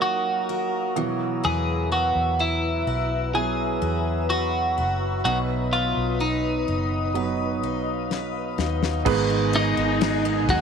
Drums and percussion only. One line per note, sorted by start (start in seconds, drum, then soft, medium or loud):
8.11 snare soft
8.59 snare medium
8.83 snare medium
9.06 kick loud
9.06 crash loud
9.53 ride medium
10.01 snare loud
10.01 ride medium
10.49 kick medium
10.49 ride medium